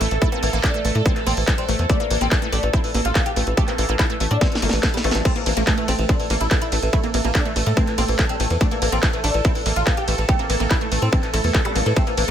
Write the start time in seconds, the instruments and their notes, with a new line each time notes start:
Already playing: synth texture A4
0.01 analog synth bass A1, oud E3, synth arpeggio sound A3, open hi-hat
0.11 analog synth bass A1, oud E3, closed hi-hat
0.22 synth arpeggio sound A3, oud E4, kick, closed hi-hat
0.32 oud E3, synth arpeggio sound A#3, wobble bass C4, closed hi-hat
0.43 analog synth bass A1, oud E3, synth arpeggio sound A#3, open hi-hat
0.53 analog synth bass A1, oud E3, synth arpeggio sound A#3, closed hi-hat
0.64 oud D4, synth arpeggio sound A4, kick, clap, closed hi-hat
0.74 oud E3, synth arpeggio sound A3, closed hi-hat
0.85 analog synth bass A1, oud E3, synth arpeggio sound A3, open hi-hat
0.95 analog synth bass A2, oud A3, closed hi-hat
1.06 oud E3, synth arpeggio sound C4, kick, closed hi-hat
1.16 oud E3, clap, closed hi-hat
1.27 analog synth bass A1, synth arpeggio sound A#3, oud C4, open hi-hat
1.37 analog synth bass A1, oud E3, open hi-hat
1.48 oud E3, wobble bass G3, synth arpeggio sound A4, kick, clap, closed hi-hat
1.58 wobble bass G3, oud C4, closed hi-hat
1.69 analog synth bass A1, oud E3, synth arpeggio sound A3, open hi-hat
1.79 analog synth bass E2, oud E3, closed hi-hat
1.90 synth arpeggio sound A3, oud D4, kick, closed hi-hat
2.00 oud E3, synth arpeggio sound A#3, closed hi-hat
2.10 analog synth bass A1, oud E3, synth arpeggio sound A#3, open hi-hat
2.21 analog synth bass A1, synth arpeggio sound A#3, oud C4, closed hi-hat
2.31 oud E3, synth arpeggio sound A4, kick, clap, closed hi-hat
2.42 oud E3, synth arpeggio sound A3, closed hi-hat
2.52 analog synth bass A1, synth arpeggio sound A3, oud D4, open hi-hat
2.63 analog synth bass A1, oud E3, closed hi-hat
2.73 synth arpeggio sound C4, oud E4, kick, closed hi-hat
2.84 oud E3, open hi-hat
2.94 analog synth bass A1, oud E3, synth arpeggio sound A#3, open hi-hat
3.05 analog synth bass A1, oud F4, closed hi-hat
3.15 oud E3, synth arpeggio sound A4, kick, clap, closed hi-hat
3.26 oud G4, closed hi-hat
3.36 analog synth bass A1, oud E3, synth arpeggio sound A3, open hi-hat
3.47 analog synth bass A1, oud E3, closed hi-hat
3.57 synth arpeggio sound A3, oud G4, kick, closed hi-hat
3.68 oud E3, synth arpeggio sound A#3, wobble bass C4, clap, closed hi-hat
3.78 analog synth bass A1, oud E3, synth arpeggio sound A#3, open hi-hat
3.89 analog synth bass A1, oud E3, synth arpeggio sound A#3, closed hi-hat
3.99 oud E4, synth arpeggio sound A4, kick, clap, closed hi-hat
4.10 oud E3, synth arpeggio sound A3, closed hi-hat
4.20 analog synth bass A1, oud E3, synth arpeggio sound A3, open hi-hat
4.31 analog synth bass A2, oud D4, closed hi-hat
4.41 oud E3, synth arpeggio sound C4, kick, snare, closed hi-hat
4.52 oud E3, snare, closed hi-hat
4.62 analog synth bass G1, oud A3, synth arpeggio sound A#3, open hi-hat
4.69 analog synth bass A1, oud E3, snare, open hi-hat
4.83 oud E3, synth arpeggio sound A4, kick, snare, clap, closed hi-hat
4.94 oud G3, snare, closed hi-hat
5.04 analog synth bass A1, oud E3, synth arpeggio sound A3, open hi-hat, zap
5.11 analog synth bass A1, oud E3, snare, closed hi-hat
5.25 synth arpeggio sound A3, oud C4, synth texture A4, kick, closed hi-hat, crash
5.36 oud E3, synth arpeggio sound A#3, closed hi-hat
5.46 analog synth bass A1, oud E3, synth arpeggio sound A#3, open hi-hat, ride
5.57 analog synth bass A1, oud A3, synth arpeggio sound A#3, closed hi-hat
5.67 oud E3, synth arpeggio sound A4, kick, clap, closed hi-hat
5.78 oud E3, synth arpeggio sound A3, closed hi-hat
5.88 analog synth bass A1, synth arpeggio sound A3, oud C4, open hi-hat, ride
5.99 analog synth bass A1, oud E3, closed hi-hat
6.09 synth arpeggio sound C4, oud D4, kick, closed hi-hat
6.20 oud E3, open hi-hat
6.30 analog synth bass A1, oud E3, synth arpeggio sound A#3, open hi-hat, ride
6.41 analog synth bass A1, oud E4, closed hi-hat
6.51 oud E3, synth arpeggio sound A4, kick, clap, closed hi-hat
6.62 oud E4, closed hi-hat
6.72 analog synth bass A1, oud E3, synth arpeggio sound A3, open hi-hat, ride
6.82 analog synth bass A1, oud E3, closed hi-hat
6.93 synth arpeggio sound A3, oud E4, kick, closed hi-hat
7.03 oud E3, synth arpeggio sound A#3, wobble bass C4, closed hi-hat
7.14 analog synth bass A1, oud E3, synth arpeggio sound A#3, open hi-hat, ride
7.24 analog synth bass A1, oud E3, synth arpeggio sound A#3, closed hi-hat
7.35 oud D4, synth arpeggio sound A4, kick, clap, closed hi-hat
7.45 oud E3, synth arpeggio sound A3, closed hi-hat
7.56 analog synth bass A1, oud E3, synth arpeggio sound A3, open hi-hat, ride
7.66 analog synth bass A2, oud A3, closed hi-hat
7.77 oud E3, synth arpeggio sound C4, kick, closed hi-hat
7.87 oud E3, clap, closed hi-hat
7.98 analog synth bass A1, synth arpeggio sound A#3, oud C4, open hi-hat, ride
8.08 analog synth bass A1, oud E3, open hi-hat
8.19 wobble bass G3, synth arpeggio sound A4, kick, clap, closed hi-hat
8.29 wobble bass G3, oud C4, closed hi-hat
8.40 analog synth bass A1, oud E3, synth arpeggio sound A3, open hi-hat, ride
8.50 analog synth bass E2, oud E3, closed hi-hat
8.61 synth arpeggio sound A3, oud D4, kick, closed hi-hat
8.71 oud E3, synth arpeggio sound A#3, closed hi-hat
8.82 analog synth bass A1, oud E3, synth arpeggio sound A#3, open hi-hat, ride
8.92 analog synth bass A1, synth arpeggio sound A#3, oud C4, closed hi-hat
9.03 oud E3, synth arpeggio sound A4, kick, clap, closed hi-hat
9.13 oud E3, synth arpeggio sound A3, closed hi-hat
9.24 analog synth bass A1, synth arpeggio sound A3, oud D4, open hi-hat, ride
9.34 analog synth bass A1, oud E3, closed hi-hat
9.45 synth arpeggio sound C4, oud E4, kick, closed hi-hat
9.55 oud E3, open hi-hat
9.66 analog synth bass A1, oud E3, synth arpeggio sound A#3, open hi-hat, ride
9.76 analog synth bass A1, oud F4, closed hi-hat
9.87 oud E3, synth arpeggio sound A4, kick, clap, closed hi-hat
9.97 oud G4, closed hi-hat
10.08 analog synth bass A1, oud E3, synth arpeggio sound A3, open hi-hat, ride
10.18 analog synth bass A1, oud E3, closed hi-hat
10.29 synth arpeggio sound A3, oud G4, kick, closed hi-hat
10.39 oud E3, synth arpeggio sound A#3, wobble bass C4, closed hi-hat
10.50 analog synth bass A1, oud E3, synth arpeggio sound A#3, open hi-hat, ride
10.60 analog synth bass A1, oud E3, synth arpeggio sound A#3, closed hi-hat
10.71 oud E4, synth arpeggio sound A4, kick, clap, closed hi-hat
10.81 oud E3, synth arpeggio sound A3, closed hi-hat
10.92 analog synth bass A1, oud E3, synth arpeggio sound A3, open hi-hat, ride
11.02 analog synth bass A2, oud C4, closed hi-hat
11.13 oud E3, synth arpeggio sound C4, kick, closed hi-hat
11.23 oud E3, clap, closed hi-hat
11.34 analog synth bass A1, oud A3, synth arpeggio sound E4, open hi-hat, ride
11.44 analog synth bass E2, oud E3, open hi-hat
11.55 oud E3, synth arpeggio sound A4, kick, clap, closed hi-hat
11.65 oud G3, closed hi-hat, zap
11.76 analog synth bass A1, oud E3, synth arpeggio sound A#3, open hi-hat, ride
11.86 analog synth bass A2, oud E3, synth arpeggio sound A4, closed hi-hat
11.96 synth arpeggio sound A3, oud C4, kick, closed hi-hat
12.07 oud E3, synth arpeggio sound A#3, closed hi-hat
12.17 analog synth bass A1, oud E3, synth arpeggio sound A#3, open hi-hat, ride